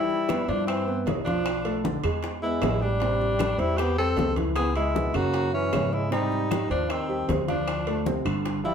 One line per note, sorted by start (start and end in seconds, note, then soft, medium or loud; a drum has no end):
0.00 0.22 E3 medium
0.00 0.45 G3 medium
0.00 0.22 E4 medium
0.00 0.45 E4 loud
0.10 high bongo soft
0.10 high conga soft
0.29 0.45 B3 medium
0.29 0.45 B4 medium
0.29 high bongo medium
0.29 high conga medium
0.29 high timbale medium
0.29 low timbale medium
0.29 claves medium
0.48 1.03 G2 medium
0.48 0.66 F3 medium
0.48 0.66 D4 medium
0.48 0.80 E4 medium
0.48 0.80 E5 medium
0.48 high bongo soft
0.48 high conga soft
0.48 high timbale medium
0.67 1.04 E3 medium
0.67 1.04 C4 medium
0.67 high bongo medium
0.67 high conga soft
0.67 high timbale medium
0.67 claves medium
0.86 1.03 B3 medium
0.86 1.03 B4 medium
0.86 high conga soft
1.06 1.98 B1 medium
1.06 1.23 E4 medium
1.06 1.23 E5 medium
1.06 high bongo soft
1.06 low bongo medium
1.06 high conga medium
1.06 high timbale medium
1.06 low timbale medium
1.25 1.58 F3 medium
1.25 1.80 F3 medium
1.25 1.80 D4 medium
1.25 1.58 F4 medium
1.25 high bongo soft
1.25 high conga medium
1.25 high timbale medium
1.46 high bongo medium
1.46 high conga soft
1.46 high timbale medium
1.46 claves medium
1.65 1.81 A3 medium
1.65 1.81 A4 medium
1.65 high bongo soft
1.65 high conga soft
1.65 high timbale medium
1.84 2.00 D3 medium
1.84 2.00 D4 medium
1.84 high bongo medium
1.84 high conga medium
1.84 low timbale medium
2.04 2.58 E2 medium
2.04 2.36 G#3 medium
2.04 2.36 G#4 medium
2.04 high bongo soft
2.04 high conga soft
2.04 high timbale medium
2.04 claves medium
2.23 high bongo medium
2.23 high conga soft
2.23 high timbale medium
2.43 2.83 G#3 medium
2.43 2.59 B3 medium
2.43 2.83 E4 medium
2.43 2.59 B4 medium
2.43 high conga soft
2.62 3.53 A1 medium
2.62 2.94 G#3 medium
2.62 2.94 G#4 medium
2.62 high bongo soft
2.62 low bongo medium
2.62 high conga medium
2.62 high timbale medium
2.62 low timbale medium
2.62 claves medium
2.81 3.60 G3 medium
2.81 3.60 D4 medium
2.81 high bongo soft
2.81 high conga soft
3.00 3.33 C3 medium
3.00 3.33 C4 medium
3.00 high bongo medium
3.00 high conga soft
3.00 high timbale medium
3.21 high bongo soft
3.21 high conga soft
3.39 3.56 G3 medium
3.39 3.56 G4 medium
3.39 high bongo medium
3.39 high conga medium
3.39 high timbale medium
3.39 low timbale medium
3.39 claves medium
3.58 4.13 E2 medium
3.58 3.81 G3 medium
3.58 3.90 C4 medium
3.58 3.79 E4 medium
3.58 3.91 C5 medium
3.58 high bongo soft
3.58 high conga soft
3.58 high timbale medium
3.77 3.98 B3 medium
3.77 3.97 G4 loud
3.77 high bongo medium
3.77 high conga soft
3.77 high timbale medium
3.77 claves medium
3.97 4.14 G3 medium
3.97 4.35 C4 medium
3.97 4.14 G4 medium
3.97 4.34 A4 loud
3.97 high conga soft
4.17 5.09 C#2 medium
4.17 4.33 C4 medium
4.17 4.34 C5 medium
4.17 high bongo soft
4.17 low bongo medium
4.17 high conga medium
4.17 high timbale medium
4.17 low timbale medium
4.36 4.69 E3 medium
4.36 4.69 E4 medium
4.36 high bongo soft
4.36 high conga medium
4.36 high timbale medium
4.56 4.74 B3 medium
4.56 4.74 G#4 loud
4.56 high bongo medium
4.56 high timbale medium
4.56 claves medium
4.75 4.92 G#3 medium
4.75 5.16 G#3 medium
4.75 5.17 E4 medium
4.75 4.92 G#4 medium
4.75 high bongo soft
4.75 high conga soft
4.75 high timbale medium
4.95 5.11 B2 medium
4.95 5.11 B3 medium
4.95 high bongo medium
4.95 high conga medium
4.95 low timbale medium
5.14 5.69 F#2 medium
5.14 5.46 C#3 medium
5.14 5.53 A#3 medium
5.14 5.47 C#4 medium
5.14 5.54 F#4 loud
5.14 high bongo soft
5.14 high conga soft
5.14 high timbale medium
5.14 claves medium
5.34 high bongo medium
5.34 high conga soft
5.34 high timbale medium
5.53 5.95 E3 medium
5.53 5.70 E3 medium
5.53 5.95 C#4 medium
5.53 5.70 E4 medium
5.53 high conga soft
5.72 6.64 G#2 medium
5.72 6.05 C#3 medium
5.72 6.05 C#4 medium
5.72 high bongo soft
5.72 low bongo medium
5.72 high conga medium
5.72 high timbale medium
5.72 low timbale medium
5.72 claves medium
5.93 6.11 G#3 medium
5.93 6.12 E4 medium
5.93 high bongo soft
5.93 high conga soft
6.11 6.43 C3 medium
6.11 6.66 G3 medium
6.11 6.43 C4 medium
6.11 6.67 D#4 medium
6.11 high bongo medium
6.11 high conga soft
6.11 high timbale medium
6.32 high bongo soft
6.32 high conga soft
6.50 6.66 G3 medium
6.50 6.67 G4 medium
6.50 high bongo medium
6.50 high conga medium
6.50 high timbale medium
6.50 low timbale medium
6.50 claves medium
6.70 7.24 D#2 medium
6.70 6.92 F3 medium
6.70 7.02 C4 medium
6.70 6.92 D4 medium
6.70 7.02 C5 medium
6.70 high bongo soft
6.70 high conga soft
6.70 high timbale medium
6.90 7.29 D#3 medium
6.90 7.29 C4 medium
6.90 high bongo medium
6.90 high conga soft
6.90 high timbale medium
6.90 claves medium
7.09 7.25 G3 medium
7.09 7.25 G4 medium
7.09 high conga soft
7.28 8.20 D2 medium
7.28 7.44 C4 medium
7.28 7.45 C5 medium
7.28 high bongo soft
7.28 low bongo medium
7.28 high conga medium
7.28 high timbale medium
7.28 low timbale medium
7.47 7.80 F3 medium
7.47 8.03 F3 medium
7.47 8.03 D4 medium
7.47 7.80 F4 medium
7.47 high bongo soft
7.47 high conga medium
7.47 high timbale medium
7.68 high bongo medium
7.68 high conga soft
7.68 high timbale medium
7.68 claves medium
7.87 8.03 A3 medium
7.87 8.03 A4 medium
7.87 high bongo soft
7.87 high conga soft
7.87 high timbale medium
8.06 8.22 C3 medium
8.06 8.23 C4 medium
8.06 high bongo medium
8.06 high conga medium
8.06 low timbale medium
8.25 8.74 G1 medium
8.25 8.58 D3 medium
8.25 8.58 D4 medium
8.25 high bongo soft
8.25 high conga soft
8.25 high timbale medium
8.25 claves medium
8.45 high bongo medium
8.45 high conga soft
8.45 high timbale medium
8.63 8.74 F3 medium
8.63 8.74 G3 medium
8.63 8.74 E4 medium
8.63 8.74 F4 medium
8.63 high conga soft